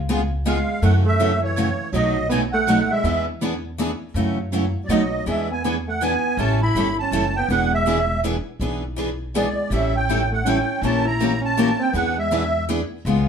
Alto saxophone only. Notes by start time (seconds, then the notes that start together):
0.46 G#3
0.83 A3
1.05 A3
1.41 E3
1.93 F#3
2.29 B3
2.53 A3
2.91 G#3
4.84 F#3
4.91 F#3
5.28 G#3
5.51 B3
5.65 B3
5.87 A3
6.02 B3
6.39 C#4
6.63 E4
7.01 C#4
7.38 B3
7.50 B3
7.74 G#3
9.35 G#3
9.72 G3
9.95 C#4
10.32 A3
10.45 C#4
10.82 C#4
11.05 E4
11.42 C#4
11.79 C4
11.92 B3
12.17 G#3